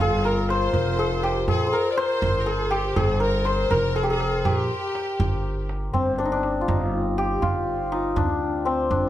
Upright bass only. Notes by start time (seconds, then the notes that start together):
0.00 G1
0.74 F1
1.48 A#1
2.22 G1
2.96 G1
3.71 F1
4.45 A#1
5.20 G1
5.94 G1
6.68 G1
7.42 G1
8.16 D2
8.91 G1